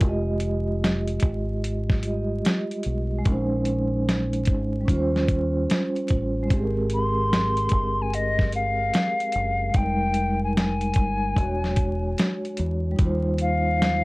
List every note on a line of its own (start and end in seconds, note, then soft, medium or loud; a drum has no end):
0.00 1.19 F1 loud
0.00 1.97 G#3 medium
0.00 1.99 F4 medium
0.00 2.01 G4 medium
0.00 kick loud
0.00 closed hi-hat medium
0.08 2.03 D#5 medium
0.40 closed hi-hat medium
0.84 snare medium
0.84 closed hi-hat medium
1.07 closed hi-hat soft
1.20 2.41 G#1 medium
1.20 kick medium
1.20 closed hi-hat medium
1.64 closed hi-hat medium
1.90 kick medium
1.90 snare soft
2.00 2.11 G3 soft
2.00 3.25 F4 soft
2.00 closed hi-hat medium
2.05 3.17 G#3 soft
2.05 3.26 G4 soft
2.05 3.27 D#5 medium
2.45 snare loud
2.45 closed hi-hat medium
2.71 closed hi-hat soft
2.83 3.23 B1 medium
2.83 closed hi-hat medium
3.18 4.81 G#3 medium
3.23 4.49 A#1 loud
3.23 3.33 C4 soft
3.23 kick loud
3.23 closed hi-hat medium
3.28 4.84 C#4 medium
3.28 4.86 D#4 medium
3.32 4.88 C5 medium
3.65 closed hi-hat medium
4.09 snare medium
4.09 closed hi-hat medium
4.33 closed hi-hat soft
4.45 4.85 G#1 medium
4.45 kick medium
4.45 closed hi-hat medium
4.81 6.43 G3 medium
4.85 5.65 D#2 medium
4.85 6.46 C#4 medium
4.85 kick medium
4.89 6.48 F4 medium
4.89 closed hi-hat medium
4.94 6.50 C5 medium
5.16 snare soft
5.28 kick loud
5.28 closed hi-hat medium
5.70 snare loud
5.70 closed hi-hat medium
5.96 closed hi-hat soft
6.08 6.47 A1 medium
6.08 kick medium
6.08 closed hi-hat medium
6.43 9.67 G#3 medium
6.48 7.68 G#1 medium
6.48 9.69 C4 medium
6.48 kick loud
6.48 closed hi-hat medium
6.52 9.71 G4 medium
6.57 6.62 G#4 medium
6.63 9.77 A#4 medium
6.90 closed hi-hat medium
6.94 8.03 C6 loud
7.33 snare medium
7.33 closed hi-hat medium
7.57 closed hi-hat soft
7.69 8.90 G1 medium
7.69 kick medium
7.69 closed hi-hat medium
8.02 8.16 G#5 medium
8.13 8.54 D#5 loud
8.13 closed hi-hat medium
8.39 kick medium
8.39 snare soft
8.52 9.78 F5 loud
8.52 closed hi-hat medium
8.94 snare loud
8.94 closed hi-hat medium
9.20 closed hi-hat soft
9.32 9.72 F#1 medium
9.32 closed hi-hat medium
9.70 11.28 G#3 medium
9.74 10.92 F1 medium
9.74 11.33 D#4 medium
9.74 10.43 G5 loud
9.74 kick loud
9.74 closed hi-hat medium
9.79 11.36 G3 medium
9.83 11.38 A#4 medium
10.14 closed hi-hat medium
10.44 10.56 G#5 medium
10.57 12.15 G#5 medium
10.57 snare medium
10.57 closed hi-hat medium
10.81 closed hi-hat soft
10.94 11.33 G1 medium
10.94 kick medium
10.94 closed hi-hat medium
11.29 12.92 G#3 medium
11.34 12.14 E1 loud
11.34 12.94 D4 medium
11.34 kick medium
11.38 12.96 F#4 medium
11.38 closed hi-hat medium
11.43 12.99 C#5 medium
11.64 snare soft
11.76 kick medium
11.76 closed hi-hat medium
12.18 snare loud
12.18 closed hi-hat medium
12.45 closed hi-hat soft
12.57 12.96 E2 medium
12.57 closed hi-hat medium
12.91 14.04 G3 medium
12.96 14.04 D#2 medium
12.96 14.04 D#4 medium
12.96 kick loud
12.96 closed hi-hat medium
13.00 14.04 F4 medium
13.05 14.04 C5 medium
13.38 14.04 F5 loud
13.38 closed hi-hat medium
13.82 snare loud
13.82 closed hi-hat medium